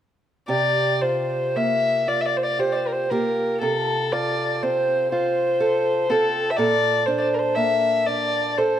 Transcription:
0.48 3.60 C3 medium
0.48 2.58 G4 soft
0.48 1.03 D5 medium
1.02 2.07 F4 soft
1.02 1.58 C5 medium
1.56 3.10 A#3 soft
1.56 2.10 E5 medium
2.08 3.11 F4 soft
2.08 2.23 D5 medium
2.21 2.27 E5 soft
2.26 2.39 D5 medium
2.37 2.45 C5 soft
2.43 2.62 D5 medium
2.59 3.11 G4 soft
2.59 2.74 C5 medium
2.72 2.89 C5 medium
2.72 2.77 D5 soft
2.87 2.94 A#4 soft
2.92 3.12 C5 medium
3.10 3.72 A#3 soft
3.10 4.12 F4 soft
3.10 3.62 G4 soft
3.10 3.60 A#4 medium
3.60 6.57 C3 medium
3.60 4.14 A4 medium
3.60 5.60 A4 soft
4.12 5.12 F4 soft
4.12 4.55 D5 medium
4.55 4.65 D5 soft
4.63 6.08 C4 soft
4.63 5.11 C5 medium
5.12 6.10 F4 soft
5.12 6.11 C5 medium
5.60 6.11 A4 medium
6.10 6.67 C4 soft
6.10 7.07 F4 soft
6.10 6.52 A4 medium
6.10 6.59 A4 medium
6.50 6.58 E5 medium
6.56 8.80 A#2 medium
6.56 8.57 A4 medium
6.56 7.08 D5 medium
7.06 8.06 D4 soft
7.06 7.20 C5 medium
7.18 7.36 C5 medium
7.18 7.22 D5 soft
7.34 7.41 A#4 soft
7.39 7.57 C5 medium
7.55 8.80 A#3 soft
7.55 8.08 E5 medium
8.07 8.80 D4 soft
8.07 8.59 D5 medium
8.57 8.80 A4 medium
8.57 8.80 C5 medium

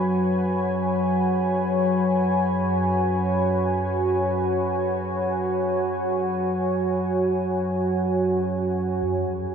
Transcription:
0.00 9.03 F#2 medium
0.00 9.04 F#3 medium
0.00 9.55 F#4 medium
0.00 9.08 B4 medium
0.00 9.55 C#5 medium
0.00 9.55 G#5 medium
0.00 9.55 B5 medium
9.04 9.55 F#2 medium
9.04 9.55 F#3 medium

